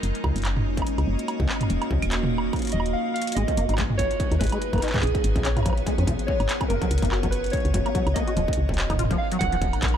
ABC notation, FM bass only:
X:1
M:4/4
L:1/16
Q:"Swing 16ths" 1/4=144
K:G#dor
V:1 name="FM bass" clef=bass
F,,, z C,, F,,,4- F,,, z C,, F,,, z2 C,, z2 | D,,, z C,, D,,,4- D,,, z2 D,,,2 z4 | G,,, z F,,, G,,,4- G,,, z D,, G,,, z2 F,,, z2 | A,,, z G,,, A,,,4- A,,, z E,, A,,, z2 G,,, z2 |
F,,, z C,, F,,,4- F,,, z C,, F,,, z2 C,, z2 | D,,, z C,, D,,,4- D,,, z2 D,,,3 A,,,2 C,, |]